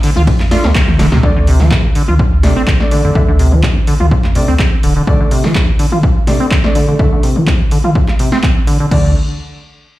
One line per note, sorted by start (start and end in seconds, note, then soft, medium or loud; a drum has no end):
0.00 0.11 D3 medium
0.00 1.19 A3 medium
0.00 1.19 D4 medium
0.00 1.22 C5 medium
0.00 open hi-hat loud
0.16 0.33 D2 medium
0.16 0.22 F4 medium
0.16 mid tom medium
0.27 kick loud
0.27 ride medium
0.40 0.57 F2 medium
0.40 snare soft
0.40 clap soft
0.51 0.65 A3 medium
0.51 0.65 D4 medium
0.51 0.66 F4 medium
0.51 0.65 D5 medium
0.51 snare medium
0.51 open hi-hat loud
0.64 0.72 D2 medium
0.64 0.73 A3 medium
0.64 snare medium
0.75 kick loud
0.75 clap loud
0.75 high tom medium
0.75 ride medium
0.88 0.96 D2 medium
0.88 mid tom medium
0.88 high tom medium
0.99 1.08 D1 loud
0.99 1.06 D3 medium
0.99 snare medium
0.99 open hi-hat loud
0.99 mid tom medium
1.12 1.20 D2 loud
1.12 1.18 C3 medium
1.12 snare medium
1.12 mid tom medium
1.23 1.78 D2 medium
1.23 1.30 D3 medium
1.23 1.44 A3 medium
1.23 1.44 D4 medium
1.23 1.44 D5 loud
1.23 kick loud
1.36 1.40 D3 medium
1.47 1.62 C3 medium
1.47 open hi-hat loud
1.60 1.73 F3 loud
1.60 snare medium
1.60 mid tom medium
1.71 1.86 D2 medium
1.71 kick loud
1.71 clap loud
1.84 1.88 F3 medium
1.95 2.03 D3 medium
1.95 open hi-hat loud
2.08 2.50 D2 medium
2.08 2.14 F4 medium
2.08 mid tom medium
2.19 kick loud
2.43 2.54 C3 medium
2.43 2.64 A3 medium
2.43 2.64 D4 medium
2.43 2.64 D5 medium
2.43 snare medium
2.43 open hi-hat loud
2.56 2.64 A1 loud
2.56 2.62 C4 loud
2.67 kick loud
2.67 clap loud
2.80 2.90 A3 medium
2.80 2.90 D4 medium
2.80 2.90 D5 medium
2.80 snare medium
2.91 3.02 D3 medium
2.91 3.12 A3 medium
2.91 3.12 D4 medium
2.91 3.12 D5 loud
2.91 open hi-hat loud
3.04 3.12 F2 loud
3.04 3.10 D3 medium
3.15 3.70 D2 loud
3.15 3.23 D3 medium
3.15 3.36 A3 medium
3.15 3.36 D4 medium
3.15 3.36 E5 medium
3.15 kick loud
3.28 3.32 D3 medium
3.39 3.54 C3 medium
3.39 open hi-hat loud
3.52 3.65 F3 loud
3.52 mid tom medium
3.63 3.78 D2 medium
3.63 kick loud
3.63 clap loud
3.76 3.80 F3 medium
3.87 3.95 D3 medium
3.87 open hi-hat loud
4.00 4.17 D2 medium
4.00 4.06 F4 medium
4.00 mid tom medium
4.11 kick loud
4.24 4.41 F2 medium
4.24 snare soft
4.24 clap soft
4.35 4.46 C3 medium
4.35 4.49 A3 medium
4.35 4.49 D4 medium
4.35 4.49 D5 medium
4.35 open hi-hat loud
4.48 4.56 D2 medium
4.48 4.54 C4 loud
4.59 kick loud
4.59 clap loud
4.83 5.01 D1 medium
4.83 4.94 D3 medium
4.83 open hi-hat loud
4.96 5.02 D3 medium
5.07 5.15 D3 medium
5.07 5.28 A3 medium
5.07 5.28 D4 medium
5.07 5.28 D5 loud
5.07 kick loud
5.20 5.24 D3 medium
5.31 5.46 C3 medium
5.31 open hi-hat loud
5.44 5.57 F3 loud
5.44 snare medium
5.44 mid tom medium
5.55 5.70 D2 medium
5.55 kick loud
5.55 clap loud
5.68 5.72 F3 medium
5.79 5.86 D3 medium
5.79 open hi-hat loud
5.92 5.98 F4 medium
5.92 mid tom medium
6.03 kick loud
6.27 6.38 C3 medium
6.27 6.48 A3 medium
6.27 6.48 D4 medium
6.27 6.48 D5 medium
6.27 snare medium
6.27 open hi-hat loud
6.40 6.46 C4 loud
6.51 kick loud
6.51 clap loud
6.64 6.74 A3 medium
6.64 6.74 D4 medium
6.64 6.74 D5 medium
6.64 snare medium
6.75 6.86 D3 medium
6.75 6.96 A3 medium
6.75 6.96 D4 medium
6.75 6.96 D5 loud
6.75 open hi-hat loud
6.88 6.94 D3 medium
6.99 7.06 D3 medium
6.99 7.20 A3 medium
6.99 7.20 D4 medium
6.99 7.20 E5 medium
6.99 kick loud
7.12 7.16 D3 medium
7.23 7.38 C3 medium
7.23 open hi-hat loud
7.36 7.49 F3 loud
7.36 mid tom medium
7.47 7.62 D2 medium
7.47 kick loud
7.47 clap loud
7.60 7.64 F3 medium
7.71 7.78 D3 medium
7.71 open hi-hat loud
7.84 7.90 F4 medium
7.84 mid tom medium
7.95 kick loud
8.08 snare soft
8.08 clap soft
8.19 8.30 C3 medium
8.19 open hi-hat loud
8.32 8.38 C4 loud
8.32 snare medium
8.43 kick loud
8.43 clap loud
8.67 8.78 D3 medium
8.67 open hi-hat loud
8.80 8.86 D3 medium
8.91 9.14 D2 medium
8.91 9.14 D3 medium
8.91 9.10 A3 medium
8.91 9.10 D4 medium
8.91 9.10 D5 loud
8.91 kick loud
8.91 crash medium